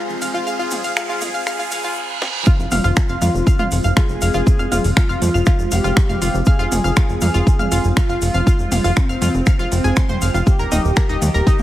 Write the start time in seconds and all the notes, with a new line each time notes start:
Already playing: F2 C3 G#3 C4 F4 G#4 C5 C6, riser
0.09 F1, shaker
0.22 F1 F5, open hi-hat, shaker
0.34 F1 F4, shaker
0.47 G#4 F5, shaker
0.59 F1 F4, shaker
0.71 F1, mid tom, open hi-hat, shaker
0.84 F1 F5, open hi-hat, shaker
0.97 G#4 F5, finger snap, shaker
1.09 F1 F4, shaker
1.21 F2, mid tom, open hi-hat, shaker
1.34 F1 F5, shaker
1.47 G#4 F5, finger snap, reverse cymbal, shaker
1.59 F1 F4, shaker
1.71 F1 G#4 F5, open hi-hat, shaker
1.84 F1 F4, shaker
2.22 snare
2.46 G#3 C4 F4 F5, kick, shaker
2.59 F1, shaker
2.71 F1 F5 F6, mid tom, open hi-hat, shaker
2.84 F1 F4 F5, shaker
2.96 finger snap, kick, shaker
3.08 F1 F5 F6, shaker
3.22 F2 F4 F5, mid tom, open hi-hat, shaker
3.35 F1, shaker
3.47 F5 F6, kick, shaker
3.59 F1 F4 F5, mid tom, shaker
3.71 F1, open hi-hat, shaker
3.84 F1 F5 F6, shaker
3.97 F4 G#4 F5, finger snap, kick, shaker
4.09 F1, shaker
4.22 F1 F5 F6, open hi-hat, shaker
4.34 F1 F4 F5, shaker
4.47 kick, shaker
4.59 F1 F5 F6, shaker
4.72 F1 F4 F5, mid tom, open hi-hat, shaker
4.84 F1, open hi-hat, shaker
4.97 F4 F5 F6, finger snap, kick, shaker
5.09 F1 F4 F5, shaker
5.22 F2, mid tom, open hi-hat, shaker
5.34 F1 F5 F6, shaker
5.46 F4 F5, finger snap, kick, shaker
5.59 F1, shaker
5.71 F1 G4 F5 F6, open hi-hat, shaker
5.84 F1 F4 F5, shaker
5.97 finger snap, kick, shaker
6.09 F1 F5 F6, mid tom, shaker
6.22 F1 F4 F5, open hi-hat, shaker
6.34 F1, shaker
6.46 G#4 F5 F6, kick, shaker
6.59 F1 F4 F5, shaker
6.72 F1, mid tom, open hi-hat, shaker
6.84 F1 F5 F6, shaker
6.96 F4 F5, finger snap, kick, shaker
7.09 F1, shaker
7.21 F2 F5 F6, mid tom, open hi-hat, shaker
7.34 F1 F4 F5, shaker
7.47 kick, shaker
7.59 F1 F5 F6, mid tom, shaker
7.72 F1 F4 F5, open hi-hat, shaker
7.84 F1, shaker
7.97 F4 F5 F6, finger snap, kick, shaker
8.09 F1 F4 F5, shaker
8.22 F1, open hi-hat, shaker
8.34 F1 F5 F6, shaker
8.47 F4 F5, kick, shaker
8.59 F1, shaker
8.72 F1 F5 F6, mid tom, open hi-hat, shaker
8.84 F1 F4 F5, open hi-hat, shaker
8.97 C4, finger snap, kick, shaker
9.09 F1 F5 F6, shaker
9.22 F2 F4 F5, mid tom, open hi-hat, shaker
9.34 F1, shaker
9.46 F5 F6, finger snap, kick, shaker
9.59 F1 F4 F5, shaker
9.72 F1 C4, open hi-hat, shaker
9.84 F1 G#4 G#5, shaker
9.96 C6, finger snap, kick, shaker
10.09 F1 C5 C6, mid tom, shaker
10.21 F1 F5 F6, open hi-hat, shaker
10.34 F1 F4 F5, shaker
10.47 D#3 D#4 G4 A#4, kick, shaker
10.55 A#4 F5, shaker
10.59 D#1 A#4 A#5
10.72 D#1 D#4 D#5, mid tom, open hi-hat, shaker
10.85 D#1, shaker
10.96 A#4 A#5, finger snap, kick, shaker
11.09 D#1 D#4 D#5, shaker
11.22 D#2, mid tom, open hi-hat, shaker
11.34 D#1 A#4 A#5, shaker
11.47 D#4 D#5, kick, shaker
11.58 D#1, mid tom, shaker